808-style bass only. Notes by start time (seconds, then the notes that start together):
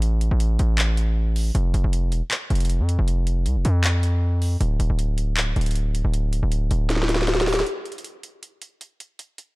Already playing: A1
0.31 A1
0.59 A1
1.55 F1
1.74 F1
1.84 F1
2.12 E1
2.50 F1
2.80 F2
2.99 F1
3.46 C2
3.56 F1
3.65 F2
4.61 D1
4.80 D1
4.90 D1
5.56 D1
6.04 D1
6.43 D1
6.71 D1